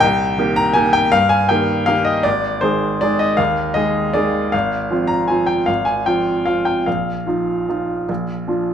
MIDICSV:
0, 0, Header, 1, 2, 480
1, 0, Start_track
1, 0, Tempo, 373367
1, 30, Time_signature, 3, 2, 24, 8
1, 4831, Tempo, 383142
1, 7711, Tempo, 403497
1, 10902, End_track
2, 0, Start_track
2, 0, Title_t, "Grand piano"
2, 0, Program_c, 0, 0
2, 0, Control_c, 0, 64, 127
2, 5, Note_on_c, 0, 79, 97
2, 27, Note_on_c, 0, 36, 72
2, 49, Control_c, 0, 64, 0
2, 248, Control_c, 0, 64, 127
2, 482, Note_off_c, 0, 36, 0
2, 486, Note_on_c, 0, 51, 51
2, 496, Note_on_c, 0, 58, 51
2, 503, Note_on_c, 0, 67, 55
2, 723, Note_on_c, 0, 82, 94
2, 726, Note_off_c, 0, 79, 0
2, 928, Note_off_c, 0, 51, 0
2, 934, Note_off_c, 0, 58, 0
2, 938, Note_off_c, 0, 67, 0
2, 945, Note_on_c, 0, 80, 89
2, 961, Note_on_c, 0, 51, 49
2, 972, Note_on_c, 0, 58, 51
2, 974, Note_on_c, 0, 67, 58
2, 976, Note_off_c, 0, 82, 0
2, 1195, Note_on_c, 0, 79, 89
2, 1206, Note_off_c, 0, 80, 0
2, 1399, Note_off_c, 0, 51, 0
2, 1406, Note_off_c, 0, 58, 0
2, 1407, Note_off_c, 0, 67, 0
2, 1436, Note_on_c, 0, 77, 100
2, 1444, Note_off_c, 0, 79, 0
2, 1451, Note_on_c, 0, 43, 66
2, 1486, Control_c, 0, 64, 0
2, 1661, Note_on_c, 0, 80, 88
2, 1681, Note_off_c, 0, 77, 0
2, 1696, Control_c, 0, 64, 127
2, 1911, Note_on_c, 0, 79, 74
2, 1913, Note_off_c, 0, 43, 0
2, 1916, Note_off_c, 0, 80, 0
2, 1927, Note_on_c, 0, 58, 50
2, 1928, Note_on_c, 0, 51, 48
2, 1934, Note_on_c, 0, 67, 54
2, 2371, Note_off_c, 0, 51, 0
2, 2371, Note_off_c, 0, 58, 0
2, 2374, Note_off_c, 0, 67, 0
2, 2392, Note_on_c, 0, 77, 91
2, 2406, Note_on_c, 0, 51, 51
2, 2411, Note_on_c, 0, 58, 51
2, 2412, Note_off_c, 0, 79, 0
2, 2419, Note_on_c, 0, 67, 52
2, 2631, Note_on_c, 0, 75, 82
2, 2650, Note_off_c, 0, 77, 0
2, 2844, Note_off_c, 0, 51, 0
2, 2847, Note_off_c, 0, 58, 0
2, 2851, Note_off_c, 0, 67, 0
2, 2870, Note_on_c, 0, 74, 85
2, 2884, Note_off_c, 0, 75, 0
2, 2889, Note_on_c, 0, 32, 64
2, 2923, Control_c, 0, 64, 0
2, 3109, Control_c, 0, 64, 127
2, 3354, Note_on_c, 0, 72, 79
2, 3360, Note_off_c, 0, 32, 0
2, 3365, Note_off_c, 0, 74, 0
2, 3370, Note_on_c, 0, 51, 48
2, 3374, Note_on_c, 0, 56, 44
2, 3388, Note_on_c, 0, 68, 51
2, 3823, Note_off_c, 0, 51, 0
2, 3826, Note_off_c, 0, 56, 0
2, 3833, Note_off_c, 0, 68, 0
2, 3866, Note_off_c, 0, 72, 0
2, 3869, Note_on_c, 0, 74, 80
2, 3887, Note_on_c, 0, 51, 44
2, 3889, Note_on_c, 0, 56, 45
2, 3893, Note_on_c, 0, 68, 48
2, 4104, Note_on_c, 0, 75, 76
2, 4117, Note_off_c, 0, 74, 0
2, 4311, Note_off_c, 0, 51, 0
2, 4313, Note_off_c, 0, 56, 0
2, 4314, Note_off_c, 0, 68, 0
2, 4332, Note_on_c, 0, 77, 80
2, 4345, Note_off_c, 0, 75, 0
2, 4348, Note_on_c, 0, 39, 63
2, 4378, Control_c, 0, 64, 0
2, 4548, Control_c, 0, 64, 127
2, 4808, Note_on_c, 0, 75, 80
2, 4815, Note_off_c, 0, 39, 0
2, 4819, Note_on_c, 0, 51, 44
2, 4821, Note_off_c, 0, 77, 0
2, 4829, Note_on_c, 0, 56, 43
2, 4836, Note_on_c, 0, 68, 49
2, 5267, Note_off_c, 0, 51, 0
2, 5273, Note_off_c, 0, 56, 0
2, 5276, Note_off_c, 0, 68, 0
2, 5303, Note_on_c, 0, 74, 77
2, 5311, Note_off_c, 0, 75, 0
2, 5316, Note_on_c, 0, 51, 45
2, 5321, Note_on_c, 0, 56, 43
2, 5323, Note_on_c, 0, 68, 48
2, 5748, Note_off_c, 0, 51, 0
2, 5751, Note_off_c, 0, 56, 0
2, 5752, Note_off_c, 0, 68, 0
2, 5789, Note_off_c, 0, 74, 0
2, 5789, Note_on_c, 0, 77, 76
2, 5806, Note_on_c, 0, 32, 59
2, 5821, Control_c, 0, 64, 0
2, 6000, Control_c, 0, 64, 127
2, 6260, Note_off_c, 0, 32, 0
2, 6270, Note_on_c, 0, 53, 43
2, 6280, Note_on_c, 0, 60, 42
2, 6286, Note_on_c, 0, 65, 45
2, 6480, Note_on_c, 0, 82, 76
2, 6505, Note_off_c, 0, 77, 0
2, 6706, Note_off_c, 0, 53, 0
2, 6711, Note_off_c, 0, 60, 0
2, 6715, Note_off_c, 0, 65, 0
2, 6733, Note_on_c, 0, 80, 61
2, 6740, Note_off_c, 0, 82, 0
2, 6756, Note_on_c, 0, 53, 41
2, 6758, Note_on_c, 0, 65, 45
2, 6761, Note_on_c, 0, 60, 41
2, 6970, Note_on_c, 0, 79, 68
2, 6989, Note_off_c, 0, 80, 0
2, 7189, Note_off_c, 0, 53, 0
2, 7191, Note_off_c, 0, 65, 0
2, 7192, Note_off_c, 0, 60, 0
2, 7215, Note_on_c, 0, 77, 74
2, 7222, Note_off_c, 0, 79, 0
2, 7232, Note_on_c, 0, 32, 55
2, 7262, Control_c, 0, 64, 0
2, 7437, Control_c, 0, 64, 127
2, 7452, Note_on_c, 0, 80, 67
2, 7460, Note_off_c, 0, 77, 0
2, 7696, Note_off_c, 0, 32, 0
2, 7704, Note_off_c, 0, 80, 0
2, 7715, Note_on_c, 0, 79, 67
2, 7721, Note_on_c, 0, 53, 38
2, 7731, Note_on_c, 0, 65, 42
2, 7732, Note_on_c, 0, 60, 36
2, 8152, Note_off_c, 0, 53, 0
2, 8157, Note_off_c, 0, 60, 0
2, 8157, Note_off_c, 0, 65, 0
2, 8186, Note_on_c, 0, 77, 66
2, 8196, Note_off_c, 0, 79, 0
2, 8203, Note_on_c, 0, 53, 35
2, 8211, Note_on_c, 0, 65, 41
2, 8213, Note_on_c, 0, 60, 37
2, 8419, Note_on_c, 0, 79, 61
2, 8429, Note_off_c, 0, 77, 0
2, 8626, Note_off_c, 0, 53, 0
2, 8630, Note_off_c, 0, 65, 0
2, 8631, Note_off_c, 0, 60, 0
2, 8662, Note_off_c, 0, 79, 0
2, 8671, Note_on_c, 0, 77, 60
2, 8683, Note_on_c, 0, 34, 46
2, 8692, Control_c, 0, 64, 0
2, 8923, Control_c, 0, 64, 127
2, 9146, Note_off_c, 0, 34, 0
2, 9148, Note_on_c, 0, 53, 33
2, 9158, Note_on_c, 0, 63, 33
2, 9161, Note_on_c, 0, 65, 37
2, 9598, Note_off_c, 0, 53, 0
2, 9603, Note_off_c, 0, 63, 0
2, 9604, Note_off_c, 0, 65, 0
2, 9650, Note_on_c, 0, 53, 35
2, 9654, Note_on_c, 0, 63, 34
2, 9657, Note_on_c, 0, 65, 39
2, 10080, Note_off_c, 0, 53, 0
2, 10082, Note_off_c, 0, 63, 0
2, 10084, Note_off_c, 0, 65, 0
2, 10130, Note_on_c, 0, 34, 46
2, 10150, Control_c, 0, 64, 0
2, 10322, Control_c, 0, 64, 127
2, 10581, Note_off_c, 0, 34, 0
2, 10589, Note_on_c, 0, 53, 32
2, 10592, Note_on_c, 0, 62, 32
2, 10602, Note_on_c, 0, 65, 35
2, 10902, Note_off_c, 0, 53, 0
2, 10902, Note_off_c, 0, 62, 0
2, 10902, Note_off_c, 0, 65, 0
2, 10902, Note_off_c, 0, 77, 0
2, 10902, End_track
0, 0, End_of_file